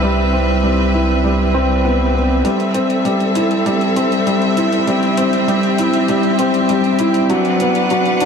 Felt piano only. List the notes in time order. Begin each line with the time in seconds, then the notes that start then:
Already playing: G3 C4 E4
0.03 G3
0.33 C4
0.63 G3
0.94 E4
1.24 G3
1.54 C4
1.85 B3
2.15 B3
2.44 G3
2.74 C4
3.05 G3
3.35 E4
3.66 G3
3.96 C4
4.27 G3
4.57 E4
4.87 G3
5.18 C4
5.48 G3
5.79 E4
6.09 G3
6.39 C4
6.70 G3
7.00 E4
7.30 F#3
7.61 B3
7.91 F#3
8.21 D4